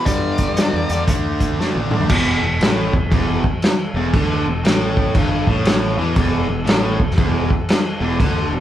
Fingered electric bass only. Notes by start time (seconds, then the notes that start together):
0.06 G2
0.48 G2
0.73 E2
0.90 E2
1.07 D2
1.50 D2
1.76 A1
2.00 D2
2.10 E1
2.42 E1
2.60 A1
2.93 E1
3.12 E1
3.94 E1
4.14 D2
4.46 E1
4.64 A1
5.15 G1
5.47 A1
5.98 E2
6.16 E1
6.48 E1
6.67 A1
7.00 E1
7.18 E1
8.01 E1
8.20 D2
8.52 E1